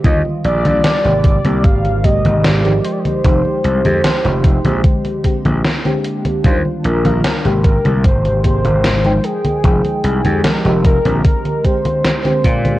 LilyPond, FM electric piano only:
\new Staff \with { instrumentName = "FM electric piano" } { \clef bass \time 4/4 \key aes \lydian \tempo 4 = 75 <d ees g f'>8. <ees g d' f'>8 <c aes bes g'>8 <c aes bes g'>8. <c aes bes g'>8. <f aes ees' g'>8. | <f aes ees' g'>8. <f aes ees' g'>8 <f aes ees' g'>8 <d aes c' g'>8. <d aes c' g'>8. <d aes c' g'>8. | <ees g d' f'>8. <ees g d' f'>8 <c aes bes g'>8 <c aes bes g'>8. <c aes bes g'>8. <f aes ees' g''>8. | <f aes ees' g''>8. <f aes ees' g'>8 <f aes ees' g'>8 <d aes c' g'>8. <d aes c' g'>8. <d aes c' g'>8. | }